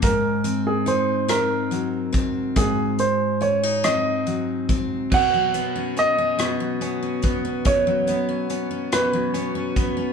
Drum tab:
CC |------|------|x-----|------|
HH |xxxxxx|xxxxxx|-xxxxx|xxxxxx|
SD |---r--|---r--|---r--|---r--|
BD |o----o|o----o|o----o|o----o|